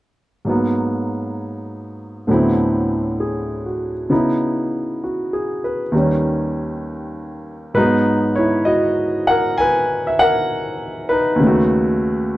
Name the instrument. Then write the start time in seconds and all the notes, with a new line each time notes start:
grand piano
0.45 G#2 F#3 A#3
0.50 B3
2.27 D2 A2 F#3 B3
2.31 C4 E4
3.20 G#4
3.66 F#4
4.10 C#3 B3 D#4 E4
5.04 F#4
5.33 G#4
5.64 B4
5.92 D#2 D#3 G3
5.97 C#4
7.74 G#2 F#3 G#3 D#4 B4
7.79 B3
8.36 E4 C#5
8.65 F#4 D#5
9.27 A#4 F#5
9.58 B4 G#5
10.07 E5
10.19 A#4 F#5
11.09 D#4 B4
11.36 D#2 C#3
11.43 A3 F#4